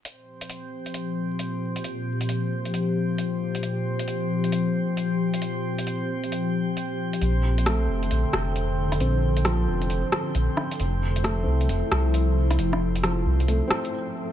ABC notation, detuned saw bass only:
X:1
M:4/4
L:1/16
Q:"Swing 16ths" 1/4=134
K:Gdor
V:1 name="Detuned saw bass" clef=bass
z16 | z16 | z16 | z16 |
B,,,6 F,,,2 B,,, z F,,,6 | B,,,6 F,,,2 F,,, z3 B,,, z3 | F,,,6 C,,2 F,,, z C,,6 | F,,,6 C,,2 C,, z6 z |]